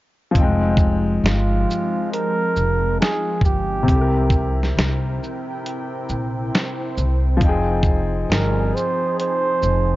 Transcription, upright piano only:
0.31 F3 C4
0.37 D#4 G5
0.43 G#3
3.83 C3 C4
3.89 E4 G4
3.95 A4
4.01 A#4
7.37 F3 C4
7.43 D#4 G5
7.49 G#4

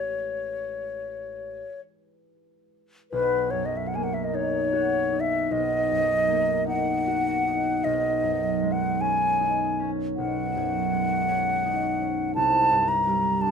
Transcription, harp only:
Already playing: A1 A3 E4 G4 B4
3.12 B1
3.53 F#2
3.94 A#3
4.34 D#4
4.73 F#4
5.12 D#4
5.51 B1
5.91 F#2
6.28 A#3
6.67 D#4
7.07 F#4
7.47 D#4
7.85 B1
8.23 F#2
8.63 G#3
9.01 C#4
9.40 D#4
9.80 C#4
10.18 B1
10.56 F#2
10.92 G#3
11.28 C#4
11.65 D#4
12.02 C#4
12.36 C2
12.72 G2
13.07 G3
13.42 D4

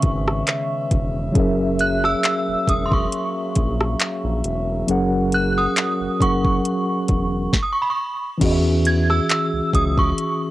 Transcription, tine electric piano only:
Already playing: C#3 D#3 C#4 B4 E5
1.32 F#3 C#4 G#4
1.38 A#4 E5
4.87 F#3 C#4 G#4 A#4 F#5
6.19 F#3 C#4 G#4 A#4 F#5
8.38 E3 C#4 F#4
8.43 G#4 D#5
8.52 E5

